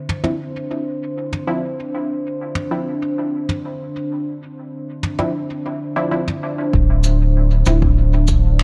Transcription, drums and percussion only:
0.09 mid tom medium
0.24 mid tom medium
1.33 mid tom soft
2.55 mid tom medium
3.49 mid tom medium
5.03 mid tom medium
5.19 mid tom soft
6.28 mid tom medium
6.73 kick loud
7.04 shaker medium
7.66 mid tom medium
7.66 shaker medium
7.82 kick loud
8.28 kick loud
8.28 shaker medium
8.59 finger snap medium

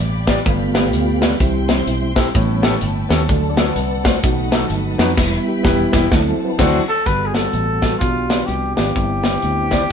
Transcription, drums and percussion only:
0.27 kick medium
0.27 snare loud
0.27 closed hi-hat medium
0.46 kick loud
0.46 closed hi-hat medium
0.75 snare loud
0.75 closed hi-hat medium
0.93 closed hi-hat medium
1.22 snare loud
1.22 closed hi-hat medium
1.40 kick medium
1.40 closed hi-hat medium
1.69 snare loud
1.69 closed hi-hat medium
1.87 closed hi-hat medium
2.16 kick medium
2.16 snare loud
2.16 closed hi-hat medium
2.35 kick loud
2.35 closed hi-hat medium
2.63 snare loud
2.63 closed hi-hat medium
2.81 closed hi-hat medium
3.10 snare loud
3.10 closed hi-hat medium
3.29 kick loud
3.29 closed hi-hat medium
3.57 snare loud
3.57 closed hi-hat medium
3.76 closed hi-hat medium
4.05 kick medium
4.05 snare loud
4.05 closed hi-hat medium
4.23 kick loud
4.23 closed hi-hat medium
4.52 snare loud
4.52 closed hi-hat medium
4.70 closed hi-hat medium
4.99 snare loud
4.99 closed hi-hat medium
5.17 kick loud
5.17 snare medium
5.17 crash medium
5.65 kick loud
5.65 snare loud
5.93 kick loud
5.93 snare loud
6.12 kick loud
6.12 snare loud
6.59 kick loud
6.59 snare loud
6.59 crash medium
7.06 kick medium
7.06 closed hi-hat medium
7.34 snare medium
7.34 closed hi-hat medium
7.53 closed hi-hat medium
7.82 kick medium
7.82 snare medium
7.82 closed hi-hat medium
8.01 kick medium
8.01 closed hi-hat medium
8.30 snare loud
8.30 closed hi-hat medium
8.48 closed hi-hat medium
8.77 snare loud
8.77 closed hi-hat medium
8.96 kick medium
8.96 closed hi-hat medium
9.23 snare medium
9.23 closed hi-hat medium
9.42 closed hi-hat medium
9.71 kick medium
9.71 snare medium
9.71 closed hi-hat medium

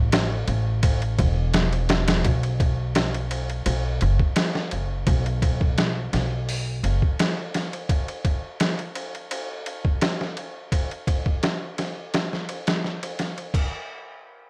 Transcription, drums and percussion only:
0.12 snare loud
0.12 ride medium
0.48 ride medium
0.83 kick loud
0.83 ride medium
1.02 ride soft
1.19 kick medium
1.19 ride medium
1.54 snare loud
1.54 ride medium
1.73 ride soft
1.89 snare loud
1.89 ride medium
2.08 snare loud
2.08 ride medium
2.25 kick loud
2.25 ride medium
2.43 ride soft
2.60 kick loud
2.60 ride medium
2.95 snare loud
2.95 ride medium
3.14 ride soft
3.31 ride medium
3.50 ride soft
3.66 ride medium
4.01 ride medium
4.19 kick medium
4.36 snare loud
4.36 ride medium
4.55 snare soft
4.71 ride medium
5.07 kick loud
5.07 ride medium
5.26 ride soft
5.42 kick loud
5.42 ride medium
5.61 kick medium
5.78 snare loud
5.78 ride medium
6.13 snare soft
6.13 ride medium
6.49 open hi-hat medium
6.84 ride medium
7.02 kick medium
7.19 snare loud
7.19 ride medium
7.54 snare soft
7.54 ride medium
7.73 ride soft
7.89 kick loud
7.89 ride medium
8.08 ride soft
8.25 kick medium
8.25 ride medium
8.60 snare loud
8.60 ride medium
8.79 ride soft
8.95 ride medium
9.15 ride soft
9.31 ride medium
9.66 ride medium
9.85 kick medium
10.01 snare loud
10.01 ride medium
10.21 snare soft
10.37 ride medium
10.72 kick loud
10.72 ride medium
10.91 ride soft
11.07 kick medium
11.07 ride medium
11.26 kick medium
11.43 snare medium
11.43 ride medium
11.78 snare soft
11.78 ride medium
12.14 snare medium
12.14 ride medium
12.33 snare soft
12.49 ride soft
12.67 snare loud
12.67 ride medium
12.84 snare soft
13.03 ride medium
13.19 snare soft
13.19 ride medium
13.38 ride soft
13.54 kick medium
13.54 crash medium

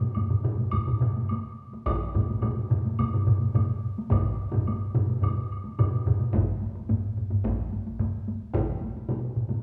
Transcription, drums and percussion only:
0.03 taiko high soft
0.15 taiko low-mid medium
0.15 taiko mid medium
0.15 taiko high soft
0.15 high woodblock soft
0.29 taiko low-mid medium
0.29 taiko mid medium
0.43 taiko low-mid medium
0.43 taiko mid medium
0.60 taiko high soft
0.71 taiko low-mid medium
0.71 taiko mid medium
0.71 taiko high soft
0.71 high woodblock medium
0.87 taiko low-mid medium
0.87 taiko mid medium
1.00 taiko low-mid loud
1.00 taiko mid medium
1.17 taiko high soft
1.29 taiko high medium
1.29 high woodblock soft
1.73 taiko high medium
1.86 taiko loud
1.86 taiko high medium
1.86 high woodblock medium
2.15 taiko low-mid medium
2.15 taiko mid medium
2.15 taiko high soft
2.30 taiko high soft
2.42 taiko low-mid medium
2.42 taiko mid medium
2.42 taiko high medium
2.42 high woodblock soft
2.70 taiko low-mid loud
2.70 taiko mid medium
2.85 taiko high medium
2.99 taiko low-mid medium
2.99 taiko mid medium
2.99 taiko high medium
2.99 high woodblock soft
3.13 taiko low-mid medium
3.13 taiko mid medium
3.27 taiko low-mid medium
3.27 taiko mid medium
3.42 taiko high soft
3.54 taiko low-mid loud
3.54 taiko mid medium
3.54 taiko high medium
3.54 high woodblock soft
3.98 taiko high medium
4.10 taiko medium
4.10 taiko low-mid loud
4.10 taiko mid medium
4.10 taiko high medium
4.10 high woodblock soft
4.52 taiko low-mid loud
4.52 taiko mid loud
4.52 taiko high soft
4.67 taiko high medium
4.67 high woodblock soft
4.95 taiko low-mid loud
4.95 taiko mid loud
5.09 taiko high medium
5.22 taiko low-mid medium
5.22 taiko mid medium
5.22 taiko high medium
5.22 high woodblock soft
5.52 high woodblock soft
5.65 taiko high soft
5.79 taiko low-mid loud
5.79 taiko mid medium
5.79 taiko high medium
5.79 high woodblock soft
6.06 taiko low-mid loud
6.06 taiko mid medium
6.20 taiko high soft
6.34 taiko medium
6.34 taiko low-mid medium
6.34 taiko high medium
6.62 taiko high medium
6.75 taiko high medium
6.89 taiko low-mid medium
6.89 taiko high medium
7.17 taiko low-mid medium
7.31 taiko low-mid medium
7.31 taiko high medium
7.44 taiko medium
7.44 taiko low-mid medium
7.44 taiko high medium
7.73 taiko high soft
7.87 taiko high soft
7.99 taiko low-mid medium
7.99 taiko high medium
8.28 taiko high medium
8.54 taiko loud
8.54 taiko mid medium
8.54 taiko high medium
8.82 taiko high medium
8.97 taiko high soft
9.09 taiko mid loud
9.09 taiko high medium
9.36 taiko mid medium
9.50 taiko mid medium
9.50 taiko high medium

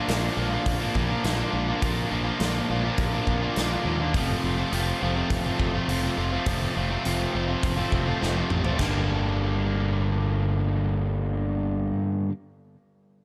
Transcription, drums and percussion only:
0.08 snare loud
0.08 open hi-hat soft
0.66 kick loud
0.66 open hi-hat medium
0.95 kick medium
1.24 snare loud
1.24 open hi-hat soft
1.82 kick loud
1.82 open hi-hat soft
2.40 snare medium
2.40 open hi-hat soft
2.98 kick loud
2.98 open hi-hat soft
3.27 kick medium
3.56 snare medium
3.56 open hi-hat soft
4.14 kick loud
4.14 open hi-hat soft
4.73 open hi-hat soft
5.30 kick loud
5.30 open hi-hat soft
5.60 kick medium
5.89 open hi-hat soft
6.46 kick loud
6.46 open hi-hat medium
7.05 open hi-hat soft
7.63 kick loud
7.63 open hi-hat soft
7.92 kick medium
8.23 snare soft
8.50 mid tom medium
8.65 floor tom medium
8.79 kick medium
8.79 snare medium
8.79 china medium

